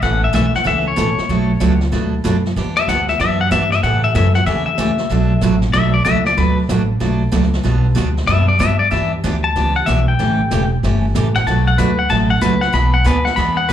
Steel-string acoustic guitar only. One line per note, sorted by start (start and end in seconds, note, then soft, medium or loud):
0.02 0.23 B2 medium
0.02 0.23 E3 medium
0.02 0.23 A3 medium
0.02 0.24 C#4 medium
0.02 0.24 A4 medium
0.33 0.45 B2 medium
0.33 0.45 E3 medium
0.33 0.45 A3 medium
0.33 0.45 C#4 medium
0.33 0.45 A4 medium
0.64 0.86 B2 medium
0.64 0.86 E3 medium
0.64 0.86 A3 medium
0.64 0.87 C#4 medium
0.64 0.87 A4 medium
0.96 1.08 B2 medium
0.96 1.08 E3 medium
0.96 1.09 A3 medium
0.96 1.09 C#4 medium
0.96 1.09 A4 medium
1.29 1.50 B2 soft
1.29 1.50 F#3 medium
1.29 1.51 A3 medium
1.29 1.51 D4 medium
1.29 1.51 F#4 medium
1.60 1.72 B2 medium
1.60 1.72 F#3 medium
1.60 1.72 A3 medium
1.60 1.73 D4 medium
1.60 1.73 F#4 medium
1.92 2.13 B2 medium
1.92 2.14 F#3 medium
1.92 2.13 A3 medium
1.92 2.14 D4 medium
1.92 2.14 F#4 medium
2.24 2.36 B2 medium
2.24 2.36 F#3 medium
2.24 2.36 A3 medium
2.24 2.36 D4 medium
2.24 2.36 F#4 medium
2.56 2.77 E3 medium
2.56 2.78 B3 medium
2.56 2.78 D4 medium
2.56 2.78 G4 medium
2.89 3.00 E3 medium
2.89 3.00 B3 medium
2.89 3.00 D4 medium
2.89 3.00 G4 medium
3.20 3.41 E3 medium
3.20 3.41 B3 medium
3.20 3.41 D4 medium
3.20 3.41 G4 medium
3.51 3.63 E3 medium
3.51 3.63 B3 medium
3.51 3.63 D4 medium
3.51 3.63 G4 medium
3.83 4.04 C#3 medium
3.83 4.05 E3 medium
3.83 4.05 A3 medium
3.83 4.05 C#4 medium
3.83 4.05 G4 medium
4.15 4.26 C#3 medium
4.15 4.26 E3 medium
4.15 4.27 A3 medium
4.15 4.27 C#4 medium
4.15 4.27 G4 medium
4.47 4.68 C#3 medium
4.47 4.68 E3 medium
4.47 4.68 A3 medium
4.47 4.69 C#4 medium
4.47 4.68 G4 medium
4.78 4.90 C#3 medium
4.78 4.90 E3 medium
4.78 4.90 A3 medium
4.78 4.90 C#4 medium
4.78 4.91 G4 medium
5.10 5.31 B2 medium
5.10 5.32 F#3 medium
5.10 5.32 A3 medium
5.10 5.32 D4 medium
5.10 5.32 F#4 medium
5.42 5.54 B2 medium
5.42 5.54 F#3 medium
5.42 5.54 A3 medium
5.42 5.54 D4 medium
5.42 5.54 F#4 medium
5.73 5.95 B2 medium
5.73 5.95 F#3 medium
5.73 5.95 A3 medium
5.73 5.95 D4 medium
5.73 5.95 F#4 medium
6.05 6.17 B2 medium
6.05 6.17 F#3 medium
6.05 6.17 A3 medium
6.05 6.17 D4 medium
6.05 6.17 F#4 medium
6.37 6.58 B2 medium
6.37 6.59 F#3 medium
6.37 6.59 A3 medium
6.37 6.59 D4 medium
6.37 6.59 F#4 medium
6.69 6.81 B2 medium
6.69 6.81 F#3 medium
6.69 6.81 A3 medium
6.69 6.81 D4 medium
6.69 6.81 F#4 medium
7.00 7.22 B2 medium
7.00 7.22 F#3 medium
7.00 7.22 A3 medium
7.00 7.22 D4 medium
7.00 7.22 F#4 medium
7.32 7.44 B2 medium
7.32 7.44 F#3 medium
7.32 7.44 A3 medium
7.32 7.44 D4 medium
7.32 7.44 F#4 medium
7.63 7.85 B2 medium
7.63 7.85 G3 medium
7.63 7.86 B3 medium
7.63 7.86 D4 medium
7.63 7.86 F#4 medium
7.95 8.07 B2 medium
7.95 8.07 G3 medium
7.95 8.07 B3 medium
7.95 8.08 D4 medium
7.95 8.08 F#4 medium
8.28 8.49 B2 medium
8.28 8.50 G3 medium
8.28 8.50 B3 medium
8.28 8.50 D4 medium
8.28 8.50 F#4 medium
8.59 8.71 B2 medium
8.59 8.71 G3 medium
8.59 8.71 B3 medium
8.59 8.72 D4 medium
8.59 8.72 F#4 medium
8.91 9.12 E3 medium
8.91 9.13 B3 medium
8.91 9.13 D4 medium
8.91 9.13 G4 medium
9.24 9.35 E3 medium
9.24 9.35 B3 medium
9.24 9.35 D4 medium
9.24 9.36 G4 medium
9.56 9.77 E3 medium
9.56 9.77 B3 medium
9.56 9.77 D4 medium
9.56 9.77 G4 medium
9.86 9.98 E3 medium
9.86 9.99 B3 medium
9.86 9.99 D4 medium
9.86 9.99 G4 medium
10.19 10.40 C#3 medium
10.19 10.41 E3 medium
10.19 10.40 A3 medium
10.19 10.41 C#4 medium
10.19 10.41 G4 medium
10.52 10.63 C#3 medium
10.52 10.63 E3 medium
10.52 10.63 A3 medium
10.52 10.63 C#4 medium
10.52 10.63 G4 medium
10.84 11.05 C#3 medium
10.84 11.05 E3 medium
10.84 11.05 A3 medium
10.84 11.05 C#4 medium
10.84 11.05 G4 medium
11.16 11.27 C#3 medium
11.16 11.27 E3 medium
11.16 11.27 A3 medium
11.16 11.27 C#4 medium
11.16 11.27 G4 medium
11.47 11.68 B2 medium
11.47 11.68 F#3 medium
11.47 11.68 A3 medium
11.47 11.68 D4 medium
11.47 11.68 F#4 medium
11.78 11.90 B2 medium
11.78 11.90 F#3 medium
11.78 11.90 A3 medium
11.78 11.90 D4 medium
11.78 11.90 F#4 medium
12.09 12.31 B2 medium
12.09 12.31 F#3 medium
12.09 12.31 A3 medium
12.09 12.31 D4 medium
12.09 12.31 F#4 medium
12.41 12.53 B2 medium
12.41 12.53 F#3 medium
12.41 12.53 A3 medium
12.41 12.54 D4 medium
12.41 12.54 F#4 medium
12.73 12.94 B2 medium
12.73 12.94 E3 medium
12.73 12.95 B3 medium
12.73 12.95 D4 medium
12.73 12.95 G#4 medium
13.04 13.17 B2 medium
13.04 13.16 E3 medium
13.04 13.17 B3 medium
13.04 13.17 D4 loud
13.04 13.17 G#4 medium
13.36 13.58 B2 medium
13.36 13.59 E3 medium
13.36 13.58 B3 medium
13.36 13.59 D4 medium
13.36 13.59 G#4 medium
13.69 13.73 B2 medium
13.69 13.73 E3 medium
13.69 13.73 B3 medium